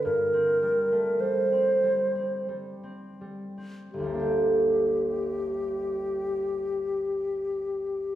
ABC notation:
X:1
M:3/4
L:1/16
Q:1/4=42
K:Gm
V:1 name="Flute"
B4 c4 z4 | G12 |]
V:2 name="Harp" clef=bass
G,, C G, A, G, C G, C G, C G, C | [G,,,D,,G,B,DG]12 |]